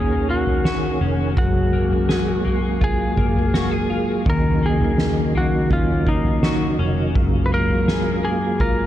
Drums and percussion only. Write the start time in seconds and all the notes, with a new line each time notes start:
0.47 floor tom
0.65 snare
1.37 kick, floor tom
1.91 floor tom
2.09 snare
2.46 floor tom
2.81 kick, floor tom
3.17 kick
3.36 floor tom
3.54 snare
4.26 kick, floor tom
4.80 floor tom
4.98 snare
5.35 floor tom
5.70 kick, floor tom
6.07 kick
6.25 floor tom
6.43 snare
7.15 kick, floor tom
7.69 floor tom
7.88 snare
8.60 kick, floor tom